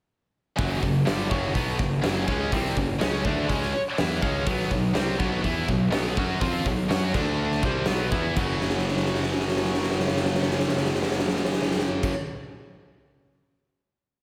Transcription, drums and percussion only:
0.59 kick, open hi-hat
0.83 kick
1.07 snare, open hi-hat
1.31 kick
1.55 kick, open hi-hat
1.79 kick
2.04 snare, open hi-hat
2.28 kick
2.52 kick, open hi-hat
2.65 snare
2.77 kick
3.01 snare, open hi-hat
3.25 kick
3.49 kick, open hi-hat
3.62 snare
3.98 snare, open hi-hat
4.22 kick
4.47 kick, open hi-hat
4.59 snare
4.71 kick
4.95 snare, open hi-hat
5.20 kick
5.44 kick, open hi-hat
5.69 kick
5.92 snare, open hi-hat
6.17 kick
6.41 kick, open hi-hat
6.66 kick
6.91 snare, open hi-hat
7.14 kick, crash
7.51 snare
7.63 kick
7.86 snare, open hi-hat
8.12 kick
8.37 kick, crash
8.61 snare
8.69 snare
8.78 snare
8.88 snare
8.96 snare
9.05 snare
9.15 snare
9.23 snare
9.32 snare
9.40 snare
9.48 snare
9.56 snare
9.65 snare
9.74 snare
9.83 snare
9.91 snare
10.00 snare
10.08 snare
10.16 snare
10.25 snare
10.34 snare
10.42 snare
10.51 snare
10.59 snare
10.68 snare
10.77 snare
10.85 snare
10.95 snare
11.02 snare
11.11 snare
11.19 snare
11.28 snare
11.36 snare
11.45 snare
11.53 snare
11.62 snare
11.71 snare
11.79 snare
12.03 kick, crash

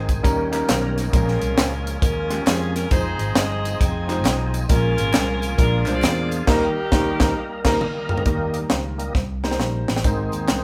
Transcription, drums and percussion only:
0.09 kick, closed hi-hat, tambourine
0.24 kick, closed hi-hat, tambourine
0.53 clap, closed hi-hat, tambourine
0.69 snare, clap, closed hi-hat, tambourine
0.98 snare, closed hi-hat, tambourine
1.13 kick, closed hi-hat, tambourine
1.28 snare
1.42 closed hi-hat, tambourine
1.58 snare, clap, closed hi-hat, tambourine
1.87 closed hi-hat, tambourine
2.02 kick, closed hi-hat, tambourine
2.31 clap, closed hi-hat, tambourine
2.47 snare, clap, closed hi-hat, tambourine
2.76 snare, closed hi-hat, tambourine
2.91 kick, closed hi-hat, tambourine
3.19 closed hi-hat, tambourine
3.35 snare, clap, closed hi-hat, tambourine
3.65 closed hi-hat, tambourine
3.81 kick, closed hi-hat, tambourine
4.10 clap, closed hi-hat, tambourine
4.25 snare, clap, closed hi-hat, tambourine
4.54 closed hi-hat, tambourine
4.69 kick, closed hi-hat, tambourine
4.98 closed hi-hat, tambourine
5.14 snare, clap, closed hi-hat, tambourine
5.42 closed hi-hat, tambourine
5.58 kick, closed hi-hat, tambourine
5.86 clap, closed hi-hat, tambourine
6.02 snare, clap, closed hi-hat, tambourine
6.31 closed hi-hat, tambourine
6.47 kick, snare, crash
6.92 kick, snare
7.20 kick, snare
7.65 kick, snare, crash
7.81 mid tom
8.09 floor tom
8.18 floor tom
8.26 kick, closed hi-hat
8.54 closed hi-hat
8.70 snare, closed hi-hat
8.99 closed hi-hat
9.15 kick, snare
9.44 snare
9.51 snare
9.60 snare
9.88 snare
9.96 snare
10.04 kick, closed hi-hat, tambourine
10.32 closed hi-hat, tambourine
10.48 snare, clap, closed hi-hat, tambourine

